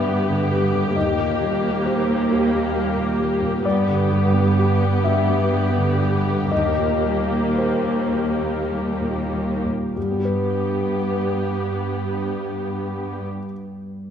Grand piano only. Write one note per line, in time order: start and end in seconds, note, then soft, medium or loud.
0.00 0.91 G2 soft
0.00 0.29 D3 soft
0.00 0.06 G3 soft
0.00 0.98 B3 soft
0.00 0.98 G4 soft
0.00 0.98 D5 medium
0.00 0.92 E5 soft
0.06 0.42 G3 soft
0.29 0.65 D3 soft
0.51 0.87 G3 soft
0.74 0.96 D3 soft
0.96 3.61 D#2 soft
0.96 1.82 D#5 medium
1.19 1.54 A#2 soft
1.42 1.77 G3 soft
1.64 1.99 A#3 soft
1.85 2.21 G4 soft
1.85 2.27 C5 soft
2.08 2.44 A#3 soft
2.30 2.66 G4 soft
2.30 3.60 A#4 soft
2.53 2.88 A#3 soft
2.76 3.11 G3 soft
2.97 3.33 A#2 soft
3.19 3.55 G3 soft
3.42 3.65 A#2 soft
3.65 6.48 G2 soft
3.65 5.00 D5 medium
3.88 4.25 D3 soft
4.12 4.48 G3 soft
4.34 4.71 B3 soft
4.58 4.95 G4 soft
4.82 5.19 B3 soft
5.04 5.43 G4 soft
5.04 6.47 E5 medium
5.28 5.67 B3 soft
5.52 5.91 G3 soft
5.77 6.16 D3 soft
6.02 6.42 G3 soft
6.28 6.52 D3 soft
6.51 9.93 D#2 soft
6.51 7.52 D#5 medium
6.78 7.19 A#2 soft
7.04 7.46 G3 soft
7.29 7.73 A#3 soft
7.56 8.01 G4 soft
7.56 8.08 C5 medium
7.84 8.29 A#3 soft
8.12 8.59 G4 soft
8.12 9.92 A#4 soft
8.42 8.89 A#3 soft
8.71 9.20 G3 soft
9.01 9.51 A#2 soft
9.32 9.83 G3 soft
9.65 9.96 A#2 soft
9.96 13.23 G2 soft
9.96 10.16 G4 soft
10.04 13.29 G3 soft
10.11 13.37 B3 soft
10.18 13.44 G4 soft
10.25 13.51 B4 soft